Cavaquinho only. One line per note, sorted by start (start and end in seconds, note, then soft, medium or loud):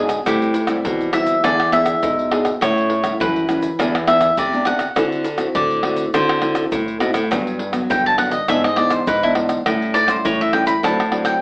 0.00 0.23 G#4 medium
0.27 1.11 G4 medium
1.13 1.42 E5 loud
1.44 1.72 D5 medium
1.73 2.57 E5 medium
2.62 3.17 C#5 medium
3.21 4.05 B4 medium
4.08 4.36 E5 loud
4.39 4.66 D5 medium
4.67 5.51 F#5 loud
5.55 6.10 D5 medium
6.14 6.98 C5 medium
7.91 8.05 G5 medium
8.06 8.18 A5 loud
8.18 8.33 F#5 medium
8.31 8.47 D#5 medium
8.49 8.63 E5 loud
8.64 8.78 D#5 medium
8.76 8.91 D5 medium
8.91 9.06 C5 medium
9.08 9.22 B4 medium
9.23 9.32 E4 medium
9.94 10.09 D5 loud
10.08 10.23 C5 medium
10.25 10.39 C#5 loud
10.41 10.53 E5 medium
10.53 10.66 G5 loud
10.67 10.82 B5 loud
10.85 11.25 A5 medium
11.26 11.41 G5 loud